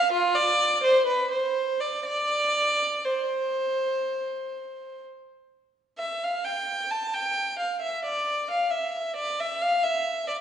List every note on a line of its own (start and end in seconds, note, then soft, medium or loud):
0.00 0.12 F5 medium
0.12 0.35 F4 medium
0.35 0.82 D5 loud
0.83 1.06 C5 medium
1.06 1.30 B4 medium
1.31 1.79 C5 medium
1.80 2.04 D5 medium
2.05 3.03 D5 medium
3.05 5.03 C5 medium
5.98 6.20 E5 medium
6.23 6.46 F5 medium
6.44 6.90 G5 medium
6.90 7.13 A5 medium
7.14 7.59 G5 medium
7.59 7.81 F5 medium
7.82 8.04 E5 medium
8.05 8.48 D5 medium
8.51 8.71 F5 medium
8.70 9.16 E5 medium
9.16 9.38 D5 medium
9.40 9.62 E5 medium
9.61 9.84 F5 medium
9.83 10.28 E5 medium
10.28 10.36 D5 medium